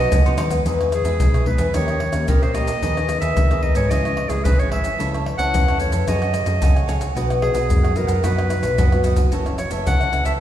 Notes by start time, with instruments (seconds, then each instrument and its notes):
Already playing: nylon-string guitar D#4, clarinet D#5
0.12 fingered electric bass C#2, pandeiro, maracas, surdo
0.25 nylon-string guitar F#3 B3 D#4, cavaquinho B4 D#5 F#5, pandeiro, high agogo, maracas
0.38 fingered electric bass D#2, pandeiro, tamborim, high agogo, maracas
0.50 nylon-string guitar G#3 B3 D#4, cavaquinho B4 D#5 F#5, pandeiro, maracas, surdo
0.66 fingered electric bass E2, nylon-string guitar E3, cavaquinho D#4 G#4 B4 E5, pandeiro, maracas, surdo
0.81 cavaquinho G#4 B4 E5, pandeiro, tamborim, maracas
0.92 clarinet G#4, muted cavaquinho stroke, pandeiro, tamborim, maracas
1.04 fingered electric bass E2, nylon-string guitar G#3 B3 D#4, cavaquinho G#4 B4 E5, pandeiro, maracas
1.20 fingered electric bass B1, nylon-string guitar B2, pandeiro, maracas, surdo
1.34 cavaquinho G#4 B4 E5, pandeiro, tamborim, maracas
1.46 nylon-string guitar G#3 B3 D#4, cavaquinho D#4 G#4 B4 E5, clarinet B4, pandeiro
1.58 fingered electric bass E2, cavaquinho G#4 B4 E5, pandeiro, maracas
1.74 fingered electric bass D#2, nylon-string guitar D#3 A#3 C#4 G4, cavaquinho D#4 G4 C#5 D#5, clarinet C#5, pandeiro, tamborim, maracas, surdo
1.88 cavaquinho G4 C#5 D#5, pandeiro, tamborim, maracas
2.00 muted cavaquinho stroke, pandeiro, tamborim
2.13 fingered electric bass D#2, nylon-string guitar A#3 C#4 G4, pandeiro, tamborim, maracas
2.28 fingered electric bass A#1, nylon-string guitar A#2, cavaquinho D#4 G4 C#5 D#5, clarinet A#4, pandeiro, maracas, surdo
2.42 cavaquinho G4 C#5 D#5, clarinet C5, pandeiro, tamborim, maracas
2.54 nylon-string guitar A#3 C#4 G4, cavaquinho D#4 G4 C#5 D#5, clarinet D#5, pandeiro, tamborim, maracas
2.67 cavaquinho G4 C#5 D#5, pandeiro, maracas
2.82 fingered electric bass D#2, nylon-string guitar D#3 B3 D#4 G#4, cavaquinho D#4 G#4 B4 D#5, pandeiro, maracas, surdo
2.97 cavaquinho G#4 B4 D#5, pandeiro, tamborim, maracas
3.08 nylon-string guitar B3 D#4 G#4, muted cavaquinho stroke, pandeiro, tamborim, maracas
3.20 fingered electric bass D#2, cavaquinho G#4 B4 D#5, clarinet E5, pandeiro, maracas
3.37 fingered electric bass D#2, nylon-string guitar D#3, pandeiro, maracas, surdo
3.51 nylon-string guitar B3 D#4 G#4, cavaquinho G#4 B4 D#5, pandeiro, tamborim, maracas
3.62 cavaquinho D#4 G#4 B4 D#5, clarinet D#5, pandeiro, surdo
3.75 fingered electric bass G#2, cavaquinho G#4 B4 D#5, clarinet C#5, pandeiro, maracas
3.90 fingered electric bass C#2, nylon-string guitar C#3 E3 G#3 C#4, cavaquinho E4 G#4 C#5 E5, clarinet D#5, pandeiro, tamborim, maracas, surdo
4.05 cavaquinho G#4 C#5 E5, pandeiro, tamborim, maracas
4.17 muted cavaquinho stroke, pandeiro, tamborim
4.29 fingered electric bass C#2, nylon-string guitar E3 G#3 C#4, clarinet G#4, pandeiro, tamborim, maracas
4.44 fingered electric bass G#1, nylon-string guitar G#2, cavaquinho E4 G#4 C#5 E5, clarinet B4, pandeiro, maracas, surdo
4.59 cavaquinho G#4 C#5 E5, clarinet C#5, pandeiro, tamborim, maracas
4.71 nylon-string guitar E3 G#3 C#4, cavaquinho E4 G#4 C#5 E5, clarinet E5, pandeiro, tamborim
4.83 cavaquinho G#4 C#5 E5, pandeiro, maracas
4.98 fingered electric bass C#2, nylon-string guitar C#3 E3 A3 C#4, cavaquinho E4 A4 C#5 E5, pandeiro, maracas, surdo
5.13 cavaquinho A4 C#5 E5, pandeiro, tamborim, maracas
5.25 muted cavaquinho stroke, pandeiro, tamborim
5.38 fingered electric bass C#2, nylon-string guitar E3 A3 C#4, cavaquinho A4 C#5 E5, clarinet F#5, pandeiro, maracas
5.54 fingered electric bass E2, nylon-string guitar C#3, pandeiro, maracas, surdo
5.67 cavaquinho A4 C#5 E5, pandeiro, tamborim, maracas
5.79 nylon-string guitar E3 A3 C#4, cavaquinho E4 A4 C#5 E5, clarinet C#5, pandeiro, maracas
5.91 fingered electric bass F2, cavaquinho A4 C#5 E5, pandeiro, maracas
6.07 fingered electric bass F#2, nylon-string guitar F#3 A3 C#4 G#4, cavaquinho A4 C#5 F#5 G#5, clarinet D#5, pandeiro, tamborim, maracas, surdo
6.21 cavaquinho C#5 F#5 G#5, pandeiro, tamborim, maracas
6.34 muted cavaquinho stroke, pandeiro, tamborim, maracas
6.46 fingered electric bass F#2, nylon-string guitar A3 C#4 G#4, pandeiro, tamborim, maracas
6.61 fingered electric bass C#2, nylon-string guitar C#3, cavaquinho A4 C#5 F#5 G#5, pandeiro, maracas, surdo
6.75 cavaquinho C#5 F#5 G#5, pandeiro, tamborim, maracas
6.87 nylon-string guitar A3 C#4 G#4, cavaquinho A4 C#5 F#5 G#5, pandeiro, tamborim, maracas
7.00 cavaquinho C#5 F#5 G#5, pandeiro, maracas
7.15 fingered electric bass B1, nylon-string guitar B2 B3 D#4 F#4, cavaquinho F#4 B4 D#5 F#5, pandeiro, maracas, surdo
7.29 cavaquinho B4 D#5 F#5, pandeiro, tamborim, maracas
7.41 clarinet G#4, muted cavaquinho stroke, pandeiro, tamborim
7.54 fingered electric bass B1, nylon-string guitar B3 D#4 F#4, cavaquinho B4 D#5 F#5, pandeiro, maracas
7.70 fingered electric bass F#2, nylon-string guitar F#2, pandeiro, maracas, surdo
7.83 cavaquinho B4 D#5 F#5, pandeiro, tamborim, maracas
7.95 nylon-string guitar B3 D#4 F#4, cavaquinho F#4 B4 D#5 F#5, clarinet A#4, pandeiro, maracas, surdo
8.07 fingered electric bass F#2, cavaquinho B4 D#5 F#5, pandeiro, maracas
8.23 fingered electric bass F#2, nylon-string guitar B2 B3 D#4 F#4, cavaquinho F#4 B4 D#5 F#5, clarinet B4, pandeiro, tamborim, maracas, surdo
8.37 cavaquinho B4 D#5 F#5, pandeiro, tamborim, maracas
8.50 nylon-string guitar B3 D#4 F#4, muted cavaquinho stroke, pandeiro, tamborim, maracas
8.63 fingered electric bass B1, pandeiro, tamborim, maracas
8.78 fingered electric bass F#2, nylon-string guitar F#2, cavaquinho F#4 B4 D#5 F#5, pandeiro, maracas, surdo
8.92 nylon-string guitar B3 D#4 F#4, cavaquinho B4 D#5 F#5, pandeiro, tamborim, maracas
9.04 cavaquinho F#4 B4 D#5 F#5, pandeiro, maracas
9.17 cavaquinho B4 D#5 F#5, pandeiro, maracas, surdo
9.32 fingered electric bass F#1, nylon-string guitar F#2 E3 A3 C#4, cavaquinho F#4 A4 C#5 E5, pandeiro, maracas, surdo
9.45 cavaquinho A4 C#5 E5, pandeiro, tamborim, maracas
9.58 clarinet C#5, muted cavaquinho stroke, pandeiro, tamborim, maracas
9.70 fingered electric bass F#1, nylon-string guitar E3 A3 C#4, cavaquinho A4 C#5 E5, pandeiro, maracas
9.86 fingered electric bass C#2, nylon-string guitar C#3, clarinet F#5, pandeiro, maracas, surdo
10.00 cavaquinho A4 C#5 E5, pandeiro, tamborim, maracas
10.12 nylon-string guitar E3 A3 C#4, cavaquinho F#4 A4 C#5 E5, pandeiro, maracas
10.24 fingered electric bass C#2, cavaquinho A4 C#5 E5, clarinet E5, pandeiro, maracas